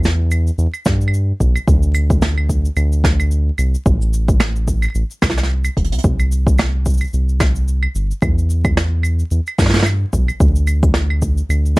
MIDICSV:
0, 0, Header, 1, 3, 480
1, 0, Start_track
1, 0, Tempo, 545455
1, 1474, Time_signature, 4, 2, 24, 8
1, 10378, End_track
2, 0, Start_track
2, 0, Title_t, "Analog synth bass"
2, 0, Program_c, 0, 38
2, 0, Note_on_c, 0, 40, 109
2, 447, Note_off_c, 0, 40, 0
2, 512, Note_on_c, 0, 40, 97
2, 594, Note_off_c, 0, 40, 0
2, 756, Note_on_c, 0, 43, 76
2, 1167, Note_off_c, 0, 43, 0
2, 1234, Note_on_c, 0, 35, 98
2, 1390, Note_off_c, 0, 35, 0
2, 1474, Note_on_c, 0, 38, 108
2, 2367, Note_off_c, 0, 38, 0
2, 2433, Note_on_c, 0, 38, 108
2, 3086, Note_off_c, 0, 38, 0
2, 3154, Note_on_c, 0, 36, 90
2, 3310, Note_off_c, 0, 36, 0
2, 3395, Note_on_c, 0, 33, 107
2, 4287, Note_off_c, 0, 33, 0
2, 4354, Note_on_c, 0, 33, 97
2, 4435, Note_off_c, 0, 33, 0
2, 4596, Note_on_c, 0, 36, 75
2, 5008, Note_off_c, 0, 36, 0
2, 5077, Note_on_c, 0, 28, 96
2, 5212, Note_on_c, 0, 36, 80
2, 5225, Note_off_c, 0, 28, 0
2, 5274, Note_off_c, 0, 36, 0
2, 5318, Note_on_c, 0, 36, 110
2, 6208, Note_off_c, 0, 36, 0
2, 6278, Note_on_c, 0, 36, 100
2, 6928, Note_off_c, 0, 36, 0
2, 6994, Note_on_c, 0, 31, 89
2, 7150, Note_off_c, 0, 31, 0
2, 7234, Note_on_c, 0, 40, 105
2, 8126, Note_off_c, 0, 40, 0
2, 8194, Note_on_c, 0, 40, 100
2, 8275, Note_off_c, 0, 40, 0
2, 8434, Note_on_c, 0, 43, 78
2, 8847, Note_off_c, 0, 43, 0
2, 8914, Note_on_c, 0, 35, 105
2, 9070, Note_off_c, 0, 35, 0
2, 9155, Note_on_c, 0, 38, 111
2, 10047, Note_off_c, 0, 38, 0
2, 10113, Note_on_c, 0, 38, 99
2, 10378, Note_off_c, 0, 38, 0
2, 10378, End_track
3, 0, Start_track
3, 0, Title_t, "Drums"
3, 32, Note_on_c, 9, 69, 55
3, 45, Note_on_c, 9, 38, 70
3, 120, Note_off_c, 9, 69, 0
3, 133, Note_off_c, 9, 38, 0
3, 274, Note_on_c, 9, 69, 91
3, 278, Note_on_c, 9, 75, 73
3, 362, Note_off_c, 9, 69, 0
3, 366, Note_off_c, 9, 75, 0
3, 414, Note_on_c, 9, 69, 40
3, 502, Note_off_c, 9, 69, 0
3, 515, Note_on_c, 9, 69, 56
3, 603, Note_off_c, 9, 69, 0
3, 647, Note_on_c, 9, 75, 68
3, 651, Note_on_c, 9, 69, 46
3, 735, Note_off_c, 9, 75, 0
3, 739, Note_off_c, 9, 69, 0
3, 751, Note_on_c, 9, 69, 84
3, 755, Note_on_c, 9, 36, 94
3, 757, Note_on_c, 9, 38, 63
3, 839, Note_off_c, 9, 69, 0
3, 843, Note_off_c, 9, 36, 0
3, 845, Note_off_c, 9, 38, 0
3, 889, Note_on_c, 9, 69, 46
3, 948, Note_on_c, 9, 75, 78
3, 977, Note_off_c, 9, 69, 0
3, 1002, Note_on_c, 9, 69, 58
3, 1036, Note_off_c, 9, 75, 0
3, 1090, Note_off_c, 9, 69, 0
3, 1235, Note_on_c, 9, 36, 60
3, 1239, Note_on_c, 9, 69, 78
3, 1323, Note_off_c, 9, 36, 0
3, 1327, Note_off_c, 9, 69, 0
3, 1369, Note_on_c, 9, 75, 82
3, 1376, Note_on_c, 9, 69, 56
3, 1457, Note_off_c, 9, 75, 0
3, 1464, Note_off_c, 9, 69, 0
3, 1474, Note_on_c, 9, 36, 118
3, 1478, Note_on_c, 9, 69, 59
3, 1562, Note_off_c, 9, 36, 0
3, 1566, Note_off_c, 9, 69, 0
3, 1608, Note_on_c, 9, 69, 47
3, 1696, Note_off_c, 9, 69, 0
3, 1712, Note_on_c, 9, 69, 82
3, 1712, Note_on_c, 9, 75, 81
3, 1800, Note_off_c, 9, 69, 0
3, 1800, Note_off_c, 9, 75, 0
3, 1849, Note_on_c, 9, 36, 102
3, 1850, Note_on_c, 9, 69, 48
3, 1937, Note_off_c, 9, 36, 0
3, 1938, Note_off_c, 9, 69, 0
3, 1952, Note_on_c, 9, 69, 62
3, 1954, Note_on_c, 9, 38, 76
3, 2040, Note_off_c, 9, 69, 0
3, 2042, Note_off_c, 9, 38, 0
3, 2091, Note_on_c, 9, 75, 81
3, 2179, Note_off_c, 9, 75, 0
3, 2194, Note_on_c, 9, 36, 60
3, 2197, Note_on_c, 9, 69, 80
3, 2282, Note_off_c, 9, 36, 0
3, 2285, Note_off_c, 9, 69, 0
3, 2333, Note_on_c, 9, 69, 48
3, 2421, Note_off_c, 9, 69, 0
3, 2432, Note_on_c, 9, 69, 54
3, 2434, Note_on_c, 9, 75, 82
3, 2520, Note_off_c, 9, 69, 0
3, 2522, Note_off_c, 9, 75, 0
3, 2573, Note_on_c, 9, 69, 49
3, 2661, Note_off_c, 9, 69, 0
3, 2674, Note_on_c, 9, 36, 94
3, 2679, Note_on_c, 9, 38, 69
3, 2685, Note_on_c, 9, 69, 85
3, 2762, Note_off_c, 9, 36, 0
3, 2767, Note_off_c, 9, 38, 0
3, 2773, Note_off_c, 9, 69, 0
3, 2814, Note_on_c, 9, 75, 74
3, 2817, Note_on_c, 9, 69, 44
3, 2902, Note_off_c, 9, 75, 0
3, 2905, Note_off_c, 9, 69, 0
3, 2915, Note_on_c, 9, 69, 60
3, 3003, Note_off_c, 9, 69, 0
3, 3151, Note_on_c, 9, 75, 74
3, 3156, Note_on_c, 9, 69, 73
3, 3239, Note_off_c, 9, 75, 0
3, 3244, Note_off_c, 9, 69, 0
3, 3295, Note_on_c, 9, 69, 53
3, 3383, Note_off_c, 9, 69, 0
3, 3395, Note_on_c, 9, 36, 124
3, 3397, Note_on_c, 9, 69, 56
3, 3483, Note_off_c, 9, 36, 0
3, 3485, Note_off_c, 9, 69, 0
3, 3535, Note_on_c, 9, 69, 43
3, 3623, Note_off_c, 9, 69, 0
3, 3638, Note_on_c, 9, 69, 80
3, 3726, Note_off_c, 9, 69, 0
3, 3769, Note_on_c, 9, 36, 102
3, 3772, Note_on_c, 9, 69, 59
3, 3857, Note_off_c, 9, 36, 0
3, 3860, Note_off_c, 9, 69, 0
3, 3871, Note_on_c, 9, 75, 84
3, 3873, Note_on_c, 9, 38, 74
3, 3873, Note_on_c, 9, 69, 61
3, 3959, Note_off_c, 9, 75, 0
3, 3961, Note_off_c, 9, 38, 0
3, 3961, Note_off_c, 9, 69, 0
3, 4012, Note_on_c, 9, 69, 44
3, 4100, Note_off_c, 9, 69, 0
3, 4115, Note_on_c, 9, 36, 55
3, 4116, Note_on_c, 9, 69, 86
3, 4203, Note_off_c, 9, 36, 0
3, 4204, Note_off_c, 9, 69, 0
3, 4244, Note_on_c, 9, 75, 74
3, 4247, Note_on_c, 9, 69, 47
3, 4262, Note_off_c, 9, 75, 0
3, 4262, Note_on_c, 9, 75, 64
3, 4272, Note_off_c, 9, 75, 0
3, 4272, Note_on_c, 9, 75, 56
3, 4299, Note_off_c, 9, 75, 0
3, 4299, Note_on_c, 9, 75, 44
3, 4317, Note_off_c, 9, 75, 0
3, 4317, Note_on_c, 9, 75, 36
3, 4334, Note_off_c, 9, 75, 0
3, 4334, Note_on_c, 9, 75, 30
3, 4335, Note_off_c, 9, 69, 0
3, 4356, Note_on_c, 9, 69, 62
3, 4422, Note_off_c, 9, 75, 0
3, 4444, Note_off_c, 9, 69, 0
3, 4494, Note_on_c, 9, 69, 49
3, 4582, Note_off_c, 9, 69, 0
3, 4594, Note_on_c, 9, 38, 72
3, 4596, Note_on_c, 9, 36, 96
3, 4596, Note_on_c, 9, 75, 85
3, 4597, Note_on_c, 9, 69, 88
3, 4661, Note_off_c, 9, 38, 0
3, 4661, Note_on_c, 9, 38, 59
3, 4684, Note_off_c, 9, 36, 0
3, 4684, Note_off_c, 9, 75, 0
3, 4685, Note_off_c, 9, 69, 0
3, 4729, Note_off_c, 9, 38, 0
3, 4729, Note_on_c, 9, 38, 46
3, 4730, Note_on_c, 9, 69, 44
3, 4781, Note_off_c, 9, 38, 0
3, 4781, Note_on_c, 9, 38, 38
3, 4818, Note_off_c, 9, 69, 0
3, 4869, Note_off_c, 9, 38, 0
3, 4966, Note_on_c, 9, 69, 55
3, 4968, Note_on_c, 9, 75, 83
3, 4970, Note_off_c, 9, 69, 0
3, 4970, Note_on_c, 9, 69, 65
3, 5056, Note_off_c, 9, 75, 0
3, 5058, Note_off_c, 9, 69, 0
3, 5076, Note_on_c, 9, 36, 59
3, 5078, Note_on_c, 9, 42, 53
3, 5143, Note_off_c, 9, 42, 0
3, 5143, Note_on_c, 9, 42, 64
3, 5164, Note_off_c, 9, 36, 0
3, 5210, Note_off_c, 9, 42, 0
3, 5210, Note_on_c, 9, 42, 82
3, 5266, Note_off_c, 9, 42, 0
3, 5266, Note_on_c, 9, 42, 81
3, 5312, Note_on_c, 9, 69, 63
3, 5316, Note_on_c, 9, 36, 123
3, 5354, Note_off_c, 9, 42, 0
3, 5400, Note_off_c, 9, 69, 0
3, 5404, Note_off_c, 9, 36, 0
3, 5451, Note_on_c, 9, 69, 46
3, 5452, Note_on_c, 9, 75, 75
3, 5539, Note_off_c, 9, 69, 0
3, 5540, Note_off_c, 9, 75, 0
3, 5559, Note_on_c, 9, 69, 83
3, 5647, Note_off_c, 9, 69, 0
3, 5690, Note_on_c, 9, 36, 107
3, 5699, Note_on_c, 9, 69, 60
3, 5778, Note_off_c, 9, 36, 0
3, 5787, Note_off_c, 9, 69, 0
3, 5793, Note_on_c, 9, 69, 58
3, 5795, Note_on_c, 9, 75, 83
3, 5801, Note_on_c, 9, 38, 90
3, 5881, Note_off_c, 9, 69, 0
3, 5883, Note_off_c, 9, 75, 0
3, 5889, Note_off_c, 9, 38, 0
3, 6034, Note_on_c, 9, 69, 82
3, 6036, Note_on_c, 9, 36, 64
3, 6068, Note_off_c, 9, 69, 0
3, 6068, Note_on_c, 9, 69, 61
3, 6103, Note_off_c, 9, 69, 0
3, 6103, Note_on_c, 9, 69, 52
3, 6124, Note_off_c, 9, 36, 0
3, 6137, Note_off_c, 9, 69, 0
3, 6137, Note_on_c, 9, 69, 45
3, 6166, Note_off_c, 9, 69, 0
3, 6166, Note_on_c, 9, 69, 43
3, 6169, Note_off_c, 9, 69, 0
3, 6169, Note_on_c, 9, 69, 32
3, 6169, Note_on_c, 9, 75, 69
3, 6223, Note_off_c, 9, 69, 0
3, 6223, Note_on_c, 9, 69, 24
3, 6249, Note_off_c, 9, 69, 0
3, 6249, Note_on_c, 9, 69, 17
3, 6257, Note_off_c, 9, 75, 0
3, 6278, Note_off_c, 9, 69, 0
3, 6278, Note_on_c, 9, 69, 56
3, 6366, Note_off_c, 9, 69, 0
3, 6414, Note_on_c, 9, 69, 42
3, 6502, Note_off_c, 9, 69, 0
3, 6512, Note_on_c, 9, 38, 76
3, 6514, Note_on_c, 9, 69, 94
3, 6515, Note_on_c, 9, 75, 78
3, 6516, Note_on_c, 9, 36, 103
3, 6600, Note_off_c, 9, 38, 0
3, 6602, Note_off_c, 9, 69, 0
3, 6603, Note_off_c, 9, 75, 0
3, 6604, Note_off_c, 9, 36, 0
3, 6649, Note_on_c, 9, 69, 50
3, 6737, Note_off_c, 9, 69, 0
3, 6759, Note_on_c, 9, 69, 60
3, 6847, Note_off_c, 9, 69, 0
3, 6887, Note_on_c, 9, 75, 87
3, 6975, Note_off_c, 9, 75, 0
3, 6998, Note_on_c, 9, 69, 88
3, 7086, Note_off_c, 9, 69, 0
3, 7136, Note_on_c, 9, 69, 49
3, 7224, Note_off_c, 9, 69, 0
3, 7235, Note_on_c, 9, 36, 123
3, 7236, Note_on_c, 9, 69, 64
3, 7236, Note_on_c, 9, 75, 77
3, 7323, Note_off_c, 9, 36, 0
3, 7324, Note_off_c, 9, 69, 0
3, 7324, Note_off_c, 9, 75, 0
3, 7378, Note_on_c, 9, 69, 50
3, 7466, Note_off_c, 9, 69, 0
3, 7480, Note_on_c, 9, 69, 86
3, 7568, Note_off_c, 9, 69, 0
3, 7609, Note_on_c, 9, 36, 108
3, 7609, Note_on_c, 9, 69, 58
3, 7610, Note_on_c, 9, 75, 85
3, 7697, Note_off_c, 9, 36, 0
3, 7697, Note_off_c, 9, 69, 0
3, 7698, Note_off_c, 9, 75, 0
3, 7719, Note_on_c, 9, 38, 96
3, 7722, Note_on_c, 9, 69, 62
3, 7807, Note_off_c, 9, 38, 0
3, 7810, Note_off_c, 9, 69, 0
3, 7949, Note_on_c, 9, 75, 82
3, 7959, Note_on_c, 9, 69, 80
3, 8037, Note_off_c, 9, 75, 0
3, 8047, Note_off_c, 9, 69, 0
3, 8089, Note_on_c, 9, 69, 46
3, 8177, Note_off_c, 9, 69, 0
3, 8194, Note_on_c, 9, 69, 67
3, 8282, Note_off_c, 9, 69, 0
3, 8331, Note_on_c, 9, 69, 50
3, 8339, Note_on_c, 9, 75, 81
3, 8419, Note_off_c, 9, 69, 0
3, 8427, Note_off_c, 9, 75, 0
3, 8433, Note_on_c, 9, 38, 37
3, 8434, Note_on_c, 9, 36, 103
3, 8439, Note_on_c, 9, 69, 93
3, 8467, Note_off_c, 9, 38, 0
3, 8467, Note_on_c, 9, 38, 38
3, 8498, Note_off_c, 9, 38, 0
3, 8498, Note_on_c, 9, 38, 48
3, 8522, Note_off_c, 9, 36, 0
3, 8527, Note_off_c, 9, 69, 0
3, 8533, Note_off_c, 9, 38, 0
3, 8533, Note_on_c, 9, 38, 53
3, 8568, Note_off_c, 9, 38, 0
3, 8568, Note_on_c, 9, 38, 49
3, 8570, Note_on_c, 9, 69, 49
3, 8593, Note_off_c, 9, 38, 0
3, 8593, Note_on_c, 9, 38, 55
3, 8621, Note_off_c, 9, 38, 0
3, 8621, Note_on_c, 9, 38, 66
3, 8646, Note_off_c, 9, 38, 0
3, 8646, Note_on_c, 9, 38, 65
3, 8658, Note_off_c, 9, 69, 0
3, 8677, Note_on_c, 9, 69, 51
3, 8677, Note_on_c, 9, 75, 70
3, 8734, Note_off_c, 9, 38, 0
3, 8765, Note_off_c, 9, 69, 0
3, 8765, Note_off_c, 9, 75, 0
3, 8914, Note_on_c, 9, 36, 67
3, 8915, Note_on_c, 9, 69, 85
3, 9002, Note_off_c, 9, 36, 0
3, 9003, Note_off_c, 9, 69, 0
3, 9050, Note_on_c, 9, 75, 74
3, 9057, Note_on_c, 9, 69, 46
3, 9138, Note_off_c, 9, 75, 0
3, 9145, Note_off_c, 9, 69, 0
3, 9155, Note_on_c, 9, 36, 123
3, 9156, Note_on_c, 9, 69, 62
3, 9243, Note_off_c, 9, 36, 0
3, 9244, Note_off_c, 9, 69, 0
3, 9290, Note_on_c, 9, 69, 51
3, 9378, Note_off_c, 9, 69, 0
3, 9391, Note_on_c, 9, 69, 90
3, 9393, Note_on_c, 9, 75, 78
3, 9479, Note_off_c, 9, 69, 0
3, 9481, Note_off_c, 9, 75, 0
3, 9529, Note_on_c, 9, 36, 109
3, 9531, Note_on_c, 9, 69, 57
3, 9617, Note_off_c, 9, 36, 0
3, 9619, Note_off_c, 9, 69, 0
3, 9625, Note_on_c, 9, 38, 83
3, 9634, Note_on_c, 9, 69, 56
3, 9713, Note_off_c, 9, 38, 0
3, 9722, Note_off_c, 9, 69, 0
3, 9770, Note_on_c, 9, 75, 77
3, 9858, Note_off_c, 9, 75, 0
3, 9872, Note_on_c, 9, 69, 96
3, 9875, Note_on_c, 9, 36, 61
3, 9960, Note_off_c, 9, 69, 0
3, 9963, Note_off_c, 9, 36, 0
3, 10010, Note_on_c, 9, 69, 47
3, 10098, Note_off_c, 9, 69, 0
3, 10121, Note_on_c, 9, 69, 64
3, 10121, Note_on_c, 9, 75, 75
3, 10209, Note_off_c, 9, 69, 0
3, 10209, Note_off_c, 9, 75, 0
3, 10259, Note_on_c, 9, 69, 48
3, 10347, Note_off_c, 9, 69, 0
3, 10378, End_track
0, 0, End_of_file